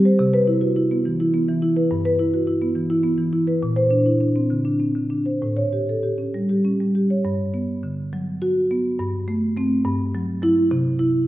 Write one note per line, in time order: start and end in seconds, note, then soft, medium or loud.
0.00 0.16 D#3 medium
0.00 0.15 G4 medium
0.05 0.20 C5 medium
0.19 1.86 C3 medium
0.34 0.57 B4 medium
0.47 0.71 E4 medium
0.61 0.76 F#4 medium
0.76 1.00 E4 medium
0.91 1.14 B3 medium
1.05 1.29 E3 medium
1.20 1.43 E4 medium
1.34 1.57 B3 medium
1.48 1.71 E3 medium
1.62 1.85 E4 medium
1.76 1.91 B4 medium
1.91 3.58 G2 medium
2.05 2.28 B4 medium
2.19 2.42 E4 medium
2.34 2.48 F#4 soft
2.47 2.70 E4 medium
2.62 2.84 B3 medium
2.75 2.98 E3 medium
2.90 3.13 E4 medium
3.04 3.27 B3 medium
3.18 3.41 E3 medium
3.33 3.56 E4 medium
3.47 3.62 B4 medium
3.63 5.37 A#2 medium
3.76 4.00 C5 medium
3.91 4.14 D4 medium
4.06 4.20 E4 soft
4.21 4.44 D4 soft
4.36 4.59 C4 soft
4.50 4.74 D3 medium
4.65 4.89 D4 soft
4.80 5.04 C4 soft
4.95 5.20 D3 soft
5.10 5.35 D4 soft
5.26 5.41 C5 soft
5.42 7.20 A2 medium
5.57 5.81 C#5 medium
5.73 5.97 G4 soft
5.89 6.04 A4 soft
6.03 6.27 G4 soft
6.18 6.42 C#4 soft
6.34 6.58 G3 soft
6.49 6.73 G4 soft
6.65 6.88 C#4 soft
6.80 7.04 G3 soft
6.95 7.18 G4 soft
7.10 7.25 C#5 soft
7.25 8.95 G2 medium
7.54 8.01 B3 medium
7.83 8.30 D3 medium
8.13 8.59 F#3 medium
8.42 8.87 F#4 medium
8.71 8.99 B3 medium
9.00 9.83 G2 medium
9.28 9.56 A3 medium
9.57 9.82 A3 medium
9.57 9.83 C4 medium
9.85 10.68 G2 medium
10.15 10.41 F#3 medium
10.42 10.68 F#3 medium
10.42 10.68 E4 medium
10.71 11.27 C3 medium
10.99 11.27 E4 medium